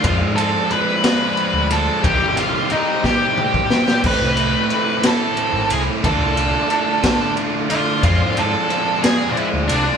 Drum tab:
CC |------------|------------|x-----------|------------|
RD |x-x-x-x-x-x-|x-x-x-------|--x-x-x-x-x-|x-x-x-x-x-x-|
SD |------o-----|------o---oo|------o-----|------o-----|
T2 |------------|--------o---|------------|------------|
BD |o-----------|o-----o--o--|o-----------|o-----o-----|

CC |------------|
RD |x-x-x-x-x-x-|
SD |------o-----|
T2 |------------|
BD |o-----------|